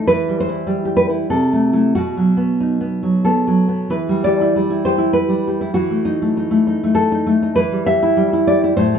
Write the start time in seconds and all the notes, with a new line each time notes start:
Already playing: A3 D#4
0.07 E3 B4
0.29 G3
0.40 C5
0.49 E4
0.67 G3
0.85 G4
0.97 B4
1.09 E4
1.30 C3 A4
1.53 A3
1.73 A3 E4
1.95 B2 F#4
2.17 F#3
2.37 B3
2.60 D#4
2.81 B3
3.03 F#3
3.25 B3 A4
3.47 F#3
3.68 B3
3.90 E3 B4
4.09 G3
4.24 G4 D5
4.41 E4
4.56 G3
4.70 E4
4.85 G4 C5
4.98 E4
5.13 B4
5.29 G3
5.47 G4
5.61 E4
5.74 E3 F#4
5.90 A3
6.05 D#4
6.22 A3
6.37 D#4
6.51 A3
6.67 D#4
6.84 A3
6.95 A4
7.12 D#4
7.27 A3
7.42 D#4
7.56 E3 B4
7.72 G3
7.86 G4 E5
8.02 E4
8.17 G3
8.33 E4
8.47 G4 D5
8.64 E4
8.77 A2 C5
8.95 A3